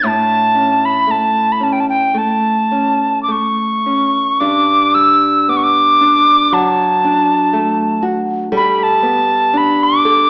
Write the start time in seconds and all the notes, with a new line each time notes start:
Already playing: G3 B3 D4
0.03 A2 A5
0.55 C#4
0.85 B5
1.07 A3 A5
1.52 B5
1.60 C#4 A5
1.72 G5
1.80 A5
1.89 G5
2.14 A3 A5
2.71 C#4
3.23 D6
3.28 A3 C#6
3.86 C#4
4.40 G2 D4 D6
4.94 G3 E6
5.48 B3 D6
5.57 C#6
5.63 D6
6.01 D4
6.52 F#3 A5
7.04 D4
7.53 A3
8.02 F#4
8.52 G3 A4
8.57 B5
8.83 A5
9.03 B3
9.53 D4
9.57 B5
9.84 D6
10.05 A4